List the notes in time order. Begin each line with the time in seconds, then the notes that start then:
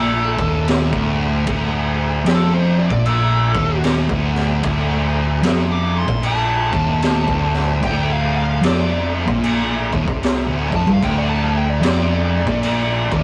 Already playing: A#1 A#2 D3 A3 E4 A4
0.38 D#1 D#2, kick
0.68 snare, crash
0.92 D1 D2, kick
1.46 D1 D2, kick, crash
2.25 F1 F2 A4, snare, crash
2.54 C5
2.79 D5
2.90 A#1 A#2, kick
3.06 A4, crash
3.55 D#1 D#2, kick
3.84 snare, crash
4.09 D1 D2, kick
4.35 snare
4.63 D1 D2, kick, crash
5.42 F1 F2, snare, crash
5.72 D6
5.99 C6
6.08 A#1 A#2, kick
6.23 A5, crash
6.71 D#1 D#2, kick
7.02 snare, crash
7.27 D1 D2, kick
7.53 snare
7.81 D1 D2 G5, kick, crash
8.12 F5
8.37 F5
8.62 F1 F2, snare, crash
8.66 D5
9.26 A#1 A#2, kick
9.44 crash
9.91 D#1 D#2, kick
10.06 C2 C3, kick
10.23 snare, crash
10.46 D1 D2
10.71 F1 F2, kick
10.76 A5
10.86 G1 G2 F5, kick
11.01 D1 D2 G5, kick, crash
11.18 D5
11.29 A5
11.43 F5
11.57 G5
11.70 D5
11.81 F1 F2 D5, snare, crash
12.46 A#1 A#2, kick
12.63 crash
13.10 D#1 D#2, kick